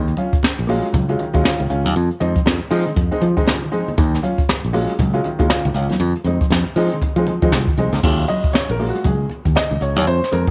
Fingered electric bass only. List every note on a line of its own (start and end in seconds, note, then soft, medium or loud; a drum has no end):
0.00 0.13 D#2 loud
0.33 muted fingered electric bass stroke soft
0.44 muted fingered electric bass stroke medium
0.59 0.80 A#1 medium
0.94 1.15 C#2 loud
1.35 1.43 D#2 medium
1.60 1.68 C#2 medium
1.70 1.86 C#2 medium
1.86 1.94 D#2 medium
1.96 2.08 F2 loud
2.21 2.33 F2 medium
2.46 2.58 F2 medium
2.71 2.84 F3 loud
2.96 3.09 F2 loud
3.22 3.34 F3 medium
3.98 4.19 D#2 loud
4.38 muted fingered electric bass stroke soft
4.49 muted fingered electric bass stroke soft
4.64 4.85 A#1 medium
4.99 5.20 C#2 loud
5.40 5.48 D#2 medium
5.65 5.73 C#2 medium
5.74 5.87 C#2 loud
5.90 5.98 D#2 medium
6.00 6.13 F2 loud
6.24 6.38 F2 medium
6.50 6.63 F2 medium
6.76 6.89 F3 medium
7.16 7.25 F3 medium
7.42 7.51 F3 medium
7.52 7.65 C2 loud
7.77 7.90 C2 medium
7.93 8.01 C#2 medium
8.04 8.24 D#2 loud
8.44 muted fingered electric bass stroke soft
8.54 muted fingered electric bass stroke soft
8.70 8.90 A#1 medium
9.05 9.26 C#2 medium
9.46 9.54 D#2 medium
9.71 9.80 C#2 medium
9.81 9.96 C#2 medium
9.96 10.05 D#2 medium
10.07 10.19 F2 loud
10.33 10.45 F2 medium